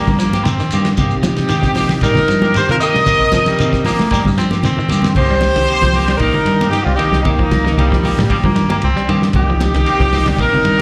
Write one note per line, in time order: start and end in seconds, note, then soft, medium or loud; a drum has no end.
0.00 0.10 A#3 medium
0.00 0.19 A#3 loud
0.00 0.10 C4 medium
0.00 0.10 G4 medium
0.07 0.29 G2 loud
0.07 kick medium
0.07 high conga medium
0.07 low conga medium
0.07 shekere soft
0.19 0.34 F3 medium
0.19 0.45 A#3 medium
0.19 snare soft
0.19 ride bell medium
0.19 shekere medium
0.33 0.49 A#3 soft
0.33 0.49 C4 medium
0.33 0.48 G4 medium
0.33 snare soft
0.33 high conga loud
0.33 shekere soft
0.43 0.57 C3 loud
0.43 0.54 D#3 medium
0.43 0.84 C4 medium
0.43 snare soft
0.43 ride bell medium
0.43 high conga medium
0.43 shekere medium
0.59 0.75 D#3 medium
0.59 muted fingered electric bass stroke soft
0.59 snare soft
0.59 shekere soft
0.71 0.93 G2 medium
0.71 0.88 D#3 medium
0.71 0.88 A#3 medium
0.71 0.89 C4 medium
0.71 0.89 G4 medium
0.71 ride bell medium
0.71 shekere medium
0.85 0.93 D3 medium
0.85 snare medium
0.85 ride bell medium
0.85 shekere soft
0.97 1.30 C3 loud
0.97 1.14 D#3 medium
0.97 1.14 A#3 medium
0.97 1.15 C4 medium
0.97 2.00 D#4 medium
0.97 1.99 G4 loud
0.97 1.15 G4 medium
0.97 kick medium
0.97 ride bell soft
0.97 low conga medium
0.97 shekere medium
1.11 shekere soft
1.23 1.39 F3 medium
1.23 snare medium
1.23 ride bell soft
1.23 high conga loud
1.23 shekere medium
1.37 1.48 C3 medium
1.37 snare medium
1.37 ride bell medium
1.37 shekere soft
1.49 1.66 D#3 medium
1.49 1.65 D#3 medium
1.49 1.66 A#3 medium
1.49 1.67 C4 medium
1.49 1.67 G4 medium
1.49 snare soft
1.49 ride bell medium
1.49 high conga medium
1.49 shekere medium
1.62 1.95 C3 loud
1.62 kick medium
1.62 snare medium
1.62 shekere soft
1.75 1.91 F3 medium
1.75 1.93 A#3 medium
1.75 1.93 C4 medium
1.75 1.93 G4 medium
1.75 open hi-hat medium
1.75 high conga medium
1.75 shekere medium
1.89 snare medium
1.89 ride bell medium
1.89 low conga medium
1.89 shekere soft
2.01 2.14 A#2 medium
2.01 2.19 D#3 medium
2.01 2.19 G3 medium
2.01 2.19 A#3 medium
2.01 2.19 C4 medium
2.01 2.52 D#4 medium
2.01 2.19 G4 medium
2.01 2.51 A#4 loud
2.01 kick medium
2.01 ride bell medium
2.01 shekere medium
2.15 muted fingered electric bass stroke soft
2.15 snare soft
2.15 high conga medium
2.15 low conga medium
2.15 shekere soft
2.28 2.50 G2 loud
2.28 2.44 F3 medium
2.28 snare soft
2.28 ride bell medium
2.28 shekere medium
2.42 2.58 A#3 soft
2.42 2.58 C4 soft
2.42 2.58 G4 medium
2.42 high conga loud
2.42 shekere soft
2.53 2.64 D#3 medium
2.53 2.69 G4 medium
2.53 2.69 C5 loud
2.53 muted fingered electric bass stroke soft
2.53 snare soft
2.53 ride bell medium
2.53 high conga medium
2.53 shekere medium
2.68 2.79 C3 medium
2.68 2.85 D#3 medium
2.68 2.76 F4 medium
2.68 2.75 A#4 loud
2.68 snare soft
2.68 shekere soft
2.80 2.97 D#3 medium
2.80 2.97 A#3 medium
2.80 2.98 C4 medium
2.80 2.98 G4 medium
2.80 4.35 A#4 loud
2.80 4.33 D#5 loud
2.80 ride bell medium
2.80 shekere medium
2.94 3.26 C3 medium
2.94 3.03 G3 medium
2.94 snare medium
2.94 shekere soft
3.06 3.23 D#3 medium
3.06 3.23 A#3 medium
3.06 3.24 C4 medium
3.06 3.24 G4 medium
3.06 kick medium
3.06 ride bell medium
3.06 low conga medium
3.06 shekere loud
3.20 kick medium
3.20 shekere soft
3.32 3.54 C3 loud
3.32 3.39 F3 medium
3.32 3.49 F3 medium
3.32 kick medium
3.32 snare medium
3.32 ride bell medium
3.32 high conga loud
3.32 shekere medium
3.46 3.83 G3 medium
3.46 snare medium
3.46 ride bell medium
3.46 shekere soft
3.59 3.81 C3 loud
3.59 3.76 D#3 medium
3.59 3.76 A#3 medium
3.59 3.77 C4 medium
3.59 ride bell medium
3.59 shekere medium
3.73 kick medium
3.73 snare medium
3.73 shekere soft
3.84 4.02 D#3 medium
3.84 4.01 F3 medium
3.84 4.10 A#3 loud
3.84 4.02 A#3 medium
3.84 4.02 C4 medium
3.84 4.03 G4 medium
3.84 snare soft
3.84 open hi-hat medium
3.84 high conga medium
3.84 shekere medium
3.99 4.10 A3 medium
3.99 snare medium
3.99 ride bell medium
3.99 shekere soft
4.11 4.28 D#3 medium
4.11 4.28 G3 medium
4.11 4.23 A#3 loud
4.11 4.28 A#3 medium
4.11 4.28 C4 medium
4.11 4.29 G4 medium
4.11 kick medium
4.11 snare soft
4.11 ride bell medium
4.11 shekere medium
4.25 4.47 G2 medium
4.25 kick medium
4.25 low conga medium
4.25 shekere soft
4.38 4.53 F3 medium
4.38 4.50 C4 loud
4.38 snare soft
4.38 ride bell medium
4.38 shekere medium
4.51 4.67 A#3 soft
4.51 4.67 C4 medium
4.51 4.66 G4 medium
4.51 snare soft
4.51 high conga loud
4.51 shekere soft
4.63 4.75 C3 medium
4.63 4.73 D#3 medium
4.63 5.13 C4 loud
4.63 ride bell medium
4.63 high conga medium
4.63 shekere medium
4.77 4.94 D#3 medium
4.77 muted fingered electric bass stroke soft
4.77 low conga medium
4.77 shekere soft
4.89 5.12 G2 medium
4.89 5.06 D#3 medium
4.89 5.06 A#3 medium
4.89 5.07 C4 medium
4.89 5.07 G4 medium
4.89 ride bell medium
4.89 low conga loud
4.89 shekere medium
5.02 snare medium
5.02 ride bell medium
5.02 low conga loud
5.07 shekere soft
5.15 5.49 C2 loud
5.15 5.33 D#3 medium
5.15 5.33 A#3 medium
5.15 5.33 C4 medium
5.15 6.18 G4 loud
5.15 5.34 G4 medium
5.15 6.17 C5 loud
5.15 kick medium
5.15 crash medium
5.15 low conga medium
5.31 5.46 G3 medium
5.41 snare medium
5.41 ride bell soft
5.41 high conga loud
5.56 5.67 C2 medium
5.56 5.72 D#3 medium
5.56 snare medium
5.56 ride bell medium
5.68 5.85 D#3 medium
5.68 5.86 A#3 medium
5.68 5.86 C4 medium
5.68 5.86 G4 medium
5.68 ride bell medium
5.81 6.13 C2 medium
5.81 5.98 F3 medium
5.81 kick medium
5.81 snare medium
5.81 high conga medium
5.94 6.11 D#3 medium
5.94 6.11 A#3 medium
5.94 6.12 C4 medium
5.94 6.12 G4 medium
5.94 open hi-hat medium
5.94 high conga loud
6.08 6.24 G3 medium
6.08 snare medium
6.08 ride bell medium
6.16 6.69 D#4 loud
6.16 6.67 A#4 loud
6.16 kick medium
6.16 ride bell medium
6.21 6.32 A#1 medium
6.21 6.38 A#3 medium
6.21 6.38 C4 medium
6.21 6.38 G4 medium
6.21 muted clean electric guitar stroke medium
6.34 muted clean electric guitar stroke medium
6.34 muted fingered electric bass stroke soft
6.34 high conga medium
6.34 low conga medium
6.45 6.67 G2 loud
6.45 6.63 D#3 medium
6.45 snare soft
6.45 ride bell medium
6.61 6.77 A#3 soft
6.61 6.76 C4 medium
6.61 6.76 G4 medium
6.61 snare soft
6.61 ride bell medium
6.61 high conga loud
6.69 6.86 D#4 medium
6.69 6.84 G4 loud
6.69 muted fingered electric bass stroke soft
6.73 snare soft
6.73 ride bell medium
6.73 high conga medium
6.83 6.96 C2 medium
6.83 6.94 G3 medium
6.83 6.96 C4 medium
6.83 6.98 F4 medium
6.94 7.22 D#4 medium
6.94 7.21 G4 medium
6.98 7.15 D#3 medium
6.98 7.16 A#3 medium
6.98 7.16 C4 medium
6.98 7.16 G4 medium
6.98 ride bell medium
7.12 7.43 C2 medium
7.12 snare medium
7.22 7.42 D#3 medium
7.22 8.26 A#3 medium
7.22 7.42 A#3 medium
7.22 8.24 D#4 medium
7.22 kick medium
7.22 ride bell medium
7.22 low conga medium
7.26 7.42 C4 medium
7.26 7.42 G4 medium
7.39 7.55 F3 medium
7.39 kick medium
7.51 7.73 C2 loud
7.51 kick medium
7.51 snare medium
7.51 ride bell medium
7.51 high conga loud
7.65 7.81 D#3 medium
7.65 snare medium
7.77 7.99 C2 medium
7.77 8.27 G3 medium
7.77 7.94 A#3 medium
7.77 7.94 C4 medium
7.77 7.95 G4 medium
7.77 muted clean electric guitar stroke medium
7.77 ride bell medium
7.77 high conga medium
7.92 8.08 F3 medium
7.92 kick medium
7.92 snare medium
8.04 8.20 D#3 medium
8.04 8.21 A#3 medium
8.04 8.21 G4 medium
8.04 muted clean electric guitar stroke medium
8.04 open hi-hat medium
8.04 high conga medium
8.17 8.28 A2 medium
8.17 8.34 G3 medium
8.17 snare medium
8.17 ride bell medium
8.17 high conga medium
8.17 low conga medium
8.29 8.46 D#3 medium
8.29 8.37 G3 medium
8.29 8.46 A#3 medium
8.29 8.47 C4 medium
8.29 8.47 G4 medium
8.29 kick medium
8.29 ride bell medium
8.44 8.65 G2 loud
8.44 8.52 F3 medium
8.44 8.69 A#3 loud
8.44 kick medium
8.44 high conga medium
8.44 low conga medium
8.56 8.71 D#3 medium
8.56 snare soft
8.56 ride bell medium
8.69 8.86 A#3 medium
8.69 8.77 A#3 medium
8.69 8.85 C4 medium
8.69 8.85 G4 medium
8.69 ride bell medium
8.69 high conga loud
8.82 8.94 C2 loud
8.82 9.21 C4 loud
8.82 ride bell medium
8.82 high conga medium
8.96 9.04 G3 medium
8.96 snare soft
9.09 9.30 G2 medium
9.09 9.25 D#3 medium
9.09 9.24 D#3 medium
9.09 9.25 A#3 medium
9.09 9.25 C4 medium
9.09 9.26 G4 medium
9.09 ride bell medium
9.22 snare medium
9.33 9.67 C2 loud
9.33 9.51 D#3 medium
9.33 9.51 A#3 medium
9.33 10.35 G4 loud
9.33 9.52 G4 medium
9.33 muted clean electric guitar stroke medium
9.33 kick loud
9.33 ride bell medium
9.33 low conga medium
9.38 10.43 D#4 medium
9.50 9.65 F3 medium
9.60 snare medium
9.60 ride bell medium
9.60 high conga loud
9.74 9.85 C2 medium
9.74 9.91 D#3 medium
9.74 snare medium
9.74 ride bell medium
9.86 10.03 D#3 medium
9.86 10.03 A#3 medium
9.86 10.03 C4 medium
9.86 10.04 G4 medium
9.86 snare soft
9.86 ride bell medium
10.00 10.31 C2 medium
10.00 10.17 F3 medium
10.00 kick medium
10.00 snare medium
10.12 10.29 D#3 medium
10.12 10.29 A#3 medium
10.12 10.30 C4 medium
10.12 10.30 G4 medium
10.12 snare soft
10.12 open hi-hat medium
10.12 high conga loud
10.26 10.43 G3 medium
10.26 snare medium
10.26 ride bell medium
10.26 high conga medium
10.26 low conga medium
10.39 10.50 A#1 medium
10.39 10.56 D#3 medium
10.39 10.56 A#3 medium
10.39 10.56 C4 medium
10.39 10.56 G4 medium
10.39 10.82 A#4 loud
10.39 kick medium
10.39 ride bell medium
10.43 10.82 D#4 loud
10.52 10.60 C3 medium
10.52 muted fingered electric bass stroke soft
10.52 high conga medium
10.52 low conga medium
10.65 10.82 G2 loud
10.65 10.81 D#3 medium
10.65 ride bell medium
10.78 10.82 G4 medium